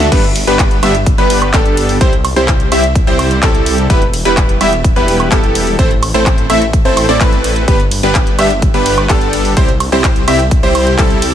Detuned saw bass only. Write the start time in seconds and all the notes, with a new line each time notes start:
0.12 G1
0.47 G1
0.83 G1
1.18 G1
1.54 G1
2.01 C2
2.36 C2
2.72 C2
3.07 C2
3.43 C2
3.90 E1
4.25 E1
4.61 E1
4.96 E1
5.32 E1
5.79 A1
6.14 A1
6.50 A1
6.85 A1
7.09 A1
7.21 A1
7.68 G1
8.03 G1
8.39 G1
8.74 G1
9.10 G1
9.57 C2
9.92 C2
10.28 C2
10.63 C2
10.99 C2